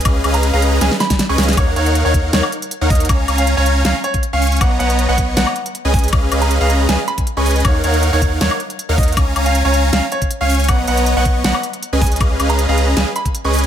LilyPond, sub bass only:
\new Staff \with { instrumentName = "Sub bass" } { \clef bass \time 4/4 \key ees \minor \tempo 4 = 158 des,8 des,8. des,8. des,16 r4 des,16 des,8 | ees,8 ees,8. ees,8. ees,16 r4 ees,8. | des,8 des,8. des,8. des,16 r4 des,8. | b,,8 b,,8. b,,8. b,,16 r4 cis,8. |
des,8 des,8. des,8. des,16 r4 des,8. | ees,8 ees,8. ees,8. ees,16 r4 ees,8. | des,8 des,8. des,8. des,16 r4 des,8. | b,,8 b,,8. b,,8. b,,16 r4 cis,8. |
des,8 des,8. des,8. des,16 r4 des,8. | }